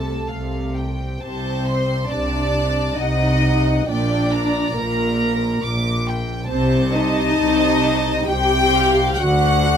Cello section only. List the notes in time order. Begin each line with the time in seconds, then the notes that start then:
Already playing: C3
0.32 C3
1.22 C3
2.10 C3
2.97 C3
3.88 A#2
4.76 A#2
5.64 A#2
6.50 C3
7.39 C3
8.27 C3
9.20 D3